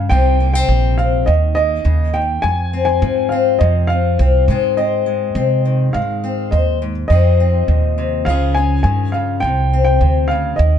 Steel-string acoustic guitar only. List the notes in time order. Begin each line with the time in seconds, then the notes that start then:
0.10 C3 G3 C4 D#4
0.40 A#3
0.55 C4
0.70 G3
0.99 C4
1.27 D#3
1.57 A#3
1.84 C#3
2.14 D#3
2.43 F2
2.73 C4
3.02 F3
3.32 C4
3.61 C3
3.90 F3
4.20 C4
4.49 G#2 G#3 C4 C5
4.78 C4
5.06 G#3
5.36 C4
5.65 D#3
5.95 G#3
6.24 C4
6.53 C5
6.82 G#2
7.10 F2 F3 C4 D#4 G#4
7.40 C4
7.68 A#2
7.98 C3
8.27 C#3 F3 C#4 F4 G#4
8.57 C#4
8.85 D#3
9.14 C#3
9.44 C3
9.73 C4
10.01 C3
10.31 C#3
10.59 D#3